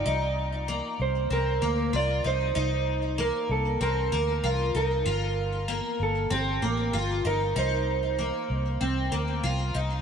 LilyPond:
<<
  \new Staff \with { instrumentName = "Clean electric guitar" } { \time 4/4 \key c \dorian \tempo 4 = 96 d''4. c''8 bes'4 d''8 c''8~ | c''4 bes'8 a'8 bes'4. bes'8~ | bes'4 r8 a'8 g'4. bes'8 | c''2. r4 | }
  \new Staff \with { instrumentName = "Twelve-string acoustic guitar" } { \time 4/4 \key c \dorian ees'4 bes4 c'8 bes8 f'8 ees'8 | ees'4 bes4 c'8 bes8 f'8 ees'8 | f'4 bes4 c'8 bes8 f'8 ees'8 | ees'4 bes4 c'8 bes8 f'8 ees'8 | }
  \new Staff \with { instrumentName = "Fingered electric bass" } { \clef bass \time 4/4 \key c \dorian c,4~ c,16 r16 c,8 c,8 d,8 c,8 c,8 | c,4~ c,16 r16 c,8 c,8 d,8 c,8 c,8 | g,,4~ g,,16 r16 g,,8 g,,8 a,,8 g,,8 g,,8 | c,4~ c,16 r16 c,8 c,8 d,8 c,8 c,8 | }
>>